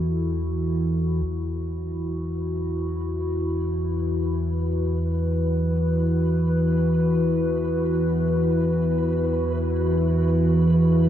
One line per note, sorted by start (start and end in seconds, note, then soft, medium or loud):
0.00 1.23 E2 medium
0.00 1.23 E3 medium
0.00 11.09 E4 medium
0.00 11.09 F#4 medium
0.00 1.26 A4 medium
1.24 11.09 E2 medium
1.24 11.09 E3 medium
1.24 11.09 B4 medium
3.45 11.09 B4 medium